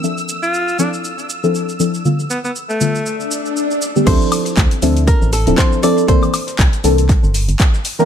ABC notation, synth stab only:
X:1
M:4/4
L:1/16
Q:"Swing 16ths" 1/4=119
K:Dm
V:1 name="Synth stab"
[F,CDAe]6 [F,CDEA]4- [F,CDEA] [F,CDEA]3 [F,CDEA]2 | [D,G,A,=B,F]2 z4 [D,G,A,B,F]2 z6 z [D,G,A,B,G] | [F,CDEA]6 [F,CDEA]4- [F,CDEA] [F,CDEA]3 [F,CDEA]2 | [E,B,CDA]2 z4 [E,B,CDA]2 z6 z [E,B,CDB] |]